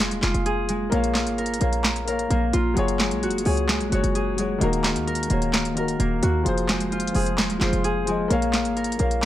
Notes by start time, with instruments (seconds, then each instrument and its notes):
Already playing: 808-style bass F1, harp A#3 F4 G#4 A#4
0.00 harp G#3, snare, clap, closed hi-hat
0.11 808-style bass D#1, closed hi-hat
0.23 808-style bass F1, harp F4, snare, clap, closed hi-hat
0.34 808-style bass F1, closed hi-hat
0.46 harp G#4, closed hi-hat
0.69 harp G#3, closed hi-hat
0.90 808-style bass A#1, grand piano A#3 A#4 C#5, harp A#3, closed hi-hat
0.95 grand piano F5
1.04 closed hi-hat
1.15 snare, clap, closed hi-hat
1.27 808-style bass G#1, closed hi-hat
1.38 harp A#4, closed hi-hat
1.46 closed hi-hat
1.54 closed hi-hat
1.59 808-style bass A#1, grand piano A#3 A#4 C#5, harp A#3, closed hi-hat
1.64 grand piano F5
1.73 closed hi-hat
1.84 snare, clap, closed hi-hat
1.96 closed hi-hat
2.05 grand piano A#3 A#4 C#5, harp A#4, closed hi-hat
2.10 grand piano F5
2.19 closed hi-hat
2.31 808-style bass A#1, harp A#3, closed hi-hat
2.53 808-style bass A#1, harp F4, closed hi-hat
2.74 808-style bass F#1, grand piano F#3 F#4 G#4, closed hi-hat
2.79 grand piano C#5
2.88 closed hi-hat
3.00 harp G#3, snare, clap, closed hi-hat
3.11 808-style bass A#1, closed hi-hat
3.23 harp F#4, closed hi-hat
3.29 808-style bass F#1, closed hi-hat
3.38 closed hi-hat
3.43 808-style bass C#2, grand piano F#3 F#4 G#4, harp G#4, open hi-hat
3.48 grand piano C#5
3.57 closed hi-hat
3.69 harp G#3, snare, clap, closed hi-hat
3.81 808-style bass A#1, closed hi-hat
3.90 808-style bass F#1, grand piano F#3 F#4 G#4, harp F#4, closed hi-hat
3.95 grand piano C#5
4.04 808-style bass F#1, closed hi-hat
4.15 harp G#4, closed hi-hat
4.36 grand piano F#3 F#4 G#4, harp G#3, closed hi-hat
4.41 grand piano C#5
4.58 808-style bass D#1, grand piano D#3 D#4 F#4, harp A#3, closed hi-hat
4.63 grand piano A#4
4.73 closed hi-hat
4.84 snare, clap, closed hi-hat
4.96 808-style bass D#2, closed hi-hat
5.07 harp A#4, closed hi-hat
5.15 closed hi-hat
5.23 closed hi-hat
5.28 808-style bass D#1, grand piano D#3 D#4 F#4, harp A#3, closed hi-hat
5.33 grand piano C#5
5.42 closed hi-hat
5.54 snare, clap, closed hi-hat
5.65 closed hi-hat
5.74 grand piano D#3 D#4 F#4, harp A#4, closed hi-hat
5.79 grand piano A#4
5.88 closed hi-hat
6.00 808-style bass D#1, harp A#3, closed hi-hat
6.23 808-style bass D#2, harp F#4, closed hi-hat
6.43 808-style bass F1, grand piano F3 F4 G#4, closed hi-hat
6.48 grand piano C5
6.58 closed hi-hat
6.69 harp G#3, snare, clap, closed hi-hat
6.80 closed hi-hat
6.92 harp F4, closed hi-hat
7.00 closed hi-hat
7.07 closed hi-hat
7.13 808-style bass F1, grand piano F3 F4 G#4, harp G#4, open hi-hat
7.18 grand piano C5
7.26 closed hi-hat
7.38 harp G#3, snare, clap, closed hi-hat
7.50 808-style bass D#1, closed hi-hat
7.59 808-style bass F1, grand piano F3 F4 G#4, harp F4, snare, clap, closed hi-hat
7.64 grand piano C5
7.73 808-style bass F1, closed hi-hat
7.84 harp G#4, closed hi-hat
8.05 grand piano F3 F4 G#4, harp G#3, closed hi-hat
8.10 grand piano D#5
8.28 808-style bass A#1, grand piano A#3 A#4 C#5, harp A#3, closed hi-hat
8.33 grand piano F5
8.42 closed hi-hat
8.53 snare, clap, closed hi-hat
8.65 808-style bass G#1, closed hi-hat
8.77 harp A#4, closed hi-hat
8.84 closed hi-hat
8.92 closed hi-hat
8.97 808-style bass A#1, grand piano A#3 A#4 C#5, harp A#3, closed hi-hat
9.02 grand piano F5
9.11 closed hi-hat